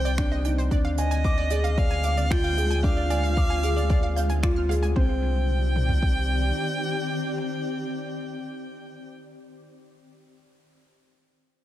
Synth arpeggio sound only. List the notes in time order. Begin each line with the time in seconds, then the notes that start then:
0.05 D5
0.32 D#5
0.45 G5
0.58 C5
0.72 D5
0.85 F5
1.11 G#5
1.24 D6
1.38 D5
1.51 D5
1.64 F5
1.91 G#5
2.04 D6
2.17 D5
2.30 D5
2.44 F5
2.71 G#5
2.84 D6
2.97 D5
3.10 D5
3.23 F5
3.50 G#5
3.63 D6
3.76 D5
3.90 D5
4.03 F5
4.16 G6
4.30 G#5
4.43 D5
4.56 F6
4.69 F5
4.83 G#5
4.96 C5